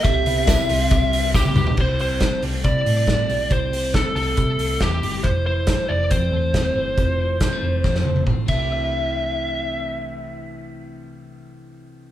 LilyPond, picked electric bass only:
\new Staff \with { instrumentName = "Picked electric bass" } { \clef bass \time 4/4 \key c \major \tempo 4 = 138 c,8 c,8. r16 c,4. b,,8 c,8 | c,4~ c,16 r16 c,8 c8 a,4 b,,8 | c,4~ c,16 r16 c,8 c8 c,8 e,8 g,,8 | f,,4~ f,,16 r16 f,,8 f,8 e,4 g,,8 |
f,,4~ f,,16 r16 f,,8 f,8 f,,8 a,,8 c,8~ | c,1~ | c,1 | }